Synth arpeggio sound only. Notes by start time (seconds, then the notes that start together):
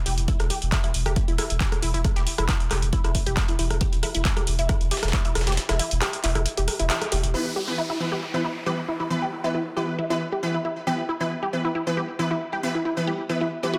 0.06 G4
0.28 E4
0.50 G4
0.72 E4
0.84 E4
1.06 G4
1.28 E4
1.38 E4
1.60 G4
1.82 E4
1.94 E4
2.16 G4
2.38 E4
2.49 E4
2.71 G4
2.93 E4
3.04 E4
3.27 G4
3.49 E4
3.59 E4
3.81 G4
4.03 E4
4.15 E4
4.37 G4
4.59 E4
4.69 E4
4.91 G4
5.13 E4
5.25 E4
5.47 G4
5.69 E4
5.80 E4
6.02 G4
6.24 E4
6.35 E4
6.58 G4
6.80 E4
6.90 E4
7.12 G4
7.34 E4
7.56 G4
7.78 E4
7.90 E4
8.12 G4
8.34 E4
8.44 E4
8.66 G4
8.88 E4
9.00 E4
9.22 G4
9.44 E4
9.55 E4
9.77 G4
9.99 E4
10.10 E4
10.32 G4
10.54 E4
10.65 E4
10.87 G4
11.09 E4
11.21 E4
11.43 G4
11.65 E4
11.75 E4
11.97 G4
12.19 E4
12.31 E4
12.53 G4
12.75 E4
12.85 E4
13.07 G4
13.30 E4
13.41 E4
13.63 G4
13.74 F#4